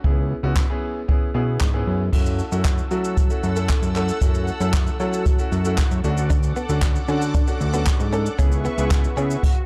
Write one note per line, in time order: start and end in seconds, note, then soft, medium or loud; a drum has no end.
0.04 0.34 C#2 loud
0.04 0.34 B3 medium
0.04 0.34 C#4 medium
0.04 0.34 E4 medium
0.04 0.34 G#4 medium
0.04 kick loud
0.43 0.63 C#2 loud
0.43 0.63 B3 medium
0.43 0.63 C#4 medium
0.43 0.63 E4 medium
0.43 0.63 F#4 medium
0.56 kick loud
0.56 snare medium
0.56 clap loud
0.69 0.99 B3 medium
0.69 0.99 C#4 medium
0.69 0.99 E4 medium
0.69 0.99 G#4 medium
1.08 1.28 B3 medium
1.08 1.28 C#4 medium
1.08 1.28 E4 medium
1.08 1.28 G#4 medium
1.08 kick loud
1.34 1.58 B2 medium
1.34 1.64 B3 medium
1.34 1.64 C#4 medium
1.34 1.64 E4 medium
1.34 1.64 G#4 medium
1.61 1.84 G#2 medium
1.61 kick loud
1.61 snare loud
1.61 clap loud
1.73 2.03 B3 medium
1.73 2.03 C#4 medium
1.73 2.03 E4 medium
1.73 2.03 G#4 medium
1.87 2.10 F#2 medium
2.12 2.42 F#2 loud
2.12 2.42 A3 medium
2.12 2.42 C#4 medium
2.12 2.42 E4 medium
2.12 2.42 F#4 medium
2.12 6.00 A4 medium
2.12 6.00 F#5 medium
2.12 6.00 E6 medium
2.12 kick loud
2.12 crash medium
2.26 shaker medium
2.39 closed hi-hat soft
2.39 shaker soft
2.52 2.81 F#2 medium
2.52 2.81 A3 medium
2.52 2.81 C#4 medium
2.52 2.81 E4 medium
2.52 2.81 F#4 medium
2.52 shaker medium
2.65 kick loud
2.65 snare medium
2.65 clap loud
2.65 closed hi-hat medium
2.65 shaker medium
2.78 shaker soft
2.91 3.30 F#3 medium
2.91 3.20 A3 medium
2.91 3.20 C#4 medium
2.91 3.20 E4 medium
2.91 3.21 F#4 medium
2.91 closed hi-hat soft
2.91 shaker soft
3.04 shaker medium
3.17 kick loud
3.17 closed hi-hat medium
3.17 shaker medium
3.30 3.50 A3 medium
3.30 3.50 C#4 medium
3.30 3.50 E4 medium
3.30 3.50 F#4 medium
3.30 shaker soft
3.43 3.73 F#2 medium
3.43 closed hi-hat medium
3.43 shaker medium
3.56 3.86 A3 medium
3.56 3.86 C#4 medium
3.56 3.86 E4 medium
3.56 3.86 A4 medium
3.56 shaker medium
3.69 kick loud
3.69 snare medium
3.69 clap loud
3.69 closed hi-hat medium
3.69 shaker medium
3.82 4.12 F#2 medium
3.82 shaker medium
3.95 4.15 A3 medium
3.95 4.15 C#4 medium
3.95 4.15 E4 medium
3.95 4.15 A4 medium
3.95 clap medium
3.95 closed hi-hat medium
3.95 shaker medium
4.09 shaker medium
4.21 4.51 F#2 loud
4.21 4.51 A3 medium
4.21 4.51 C#4 medium
4.21 4.51 E4 medium
4.21 4.51 F#4 medium
4.21 kick loud
4.21 closed hi-hat medium
4.21 shaker medium
4.34 shaker medium
4.48 closed hi-hat medium
4.48 shaker soft
4.60 4.90 F#2 medium
4.60 4.90 A3 medium
4.60 4.90 C#4 medium
4.60 4.90 E4 medium
4.60 4.90 A4 medium
4.60 shaker medium
4.74 kick loud
4.74 snare medium
4.74 clap loud
4.74 closed hi-hat medium
4.74 shaker medium
4.87 shaker soft
5.00 5.39 F#3 medium
5.00 5.29 A3 medium
5.00 5.29 C#4 medium
5.00 5.29 E4 medium
5.00 5.29 A4 medium
5.00 closed hi-hat soft
5.00 shaker soft
5.13 shaker medium
5.26 kick loud
5.26 closed hi-hat medium
5.26 shaker medium
5.39 5.58 A3 medium
5.39 5.59 C#4 medium
5.39 5.59 E4 medium
5.39 5.59 F#4 medium
5.39 shaker soft
5.52 5.81 F#2 medium
5.52 closed hi-hat medium
5.52 shaker medium
5.65 5.94 A3 medium
5.65 5.94 C#4 medium
5.65 5.95 E4 medium
5.65 5.95 F#4 medium
5.65 shaker medium
5.78 kick loud
5.78 snare medium
5.78 clap loud
5.78 closed hi-hat medium
5.78 shaker medium
5.91 6.01 F#2 medium
5.91 shaker medium
6.04 6.53 D2 loud
6.04 6.56 A3 medium
6.04 6.56 C#4 medium
6.04 6.56 D4 medium
6.04 6.57 F#4 loud
6.04 8.37 A4 medium
6.04 8.37 F#5 medium
6.04 8.37 D6 medium
6.04 closed hi-hat medium
6.04 shaker medium
6.17 shaker medium
6.30 6.39 D4 medium
6.30 kick loud
6.30 closed hi-hat medium
6.30 shaker medium
6.43 muted clean electric guitar stroke soft
6.43 shaker medium
6.56 6.65 B3 medium
6.56 closed hi-hat soft
6.56 shaker medium
6.69 6.99 D2 medium
6.69 6.99 A3 medium
6.69 6.99 C#4 medium
6.69 6.99 D4 medium
6.69 6.99 F#4 medium
6.69 shaker medium
6.82 kick loud
6.82 snare medium
6.82 clap loud
6.82 closed hi-hat medium
6.82 shaker medium
6.95 shaker medium
7.08 7.48 D3 medium
7.08 7.38 A3 medium
7.08 7.17 C#4 medium
7.08 7.38 C#4 medium
7.08 7.38 D4 medium
7.08 7.38 F#4 medium
7.08 closed hi-hat soft
7.08 shaker soft
7.22 shaker medium
7.34 7.43 D4 medium
7.34 kick loud
7.34 closed hi-hat medium
7.34 shaker medium
7.47 7.67 A3 medium
7.47 7.67 C#4 medium
7.47 7.67 D4 medium
7.47 7.67 F#4 medium
7.47 muted clean electric guitar stroke soft
7.47 shaker soft
7.61 7.90 D2 medium
7.61 closed hi-hat soft
7.61 shaker medium
7.73 8.03 A3 medium
7.73 7.82 B3 medium
7.73 8.03 C#4 medium
7.73 8.03 D4 medium
7.73 8.03 F#4 medium
7.73 shaker medium
7.87 kick loud
7.87 snare loud
7.87 clap loud
7.87 closed hi-hat medium
7.87 shaker medium
8.00 8.29 G#2 loud
8.00 shaker medium
8.13 8.32 A3 medium
8.13 8.21 C#4 medium
8.13 8.32 C#4 medium
8.13 8.32 D4 medium
8.13 8.33 A4 medium
8.13 closed hi-hat medium
8.13 shaker medium
8.26 shaker medium
8.39 8.68 C#2 loud
8.39 8.68 B3 medium
8.39 8.47 C#4 medium
8.39 8.68 C#4 medium
8.39 8.69 E4 medium
8.39 8.69 G#4 loud
8.39 9.42 B4 medium
8.39 9.42 E5 medium
8.39 9.42 C#6 medium
8.39 kick loud
8.39 closed hi-hat medium
8.39 swell medium
8.39 shaker medium
8.52 muted clean electric guitar stroke soft
8.52 shaker medium
8.65 8.73 B3 medium
8.65 closed hi-hat soft
8.65 shaker medium
8.78 9.07 C#2 medium
8.78 9.07 B3 medium
8.78 9.07 C#4 medium
8.78 9.08 E4 medium
8.78 9.08 G#4 medium
8.78 shaker medium
8.91 kick loud
8.91 snare medium
8.91 clap loud
8.91 closed hi-hat medium
8.91 shaker medium
9.04 shaker medium
9.17 9.37 C#3 medium
9.17 9.43 B3 medium
9.17 9.43 C#4 medium
9.17 9.26 C#4 medium
9.17 9.43 E4 medium
9.17 9.43 G#4 medium
9.17 closed hi-hat soft
9.17 shaker soft
9.31 shaker medium
9.43 kick loud
9.43 crash medium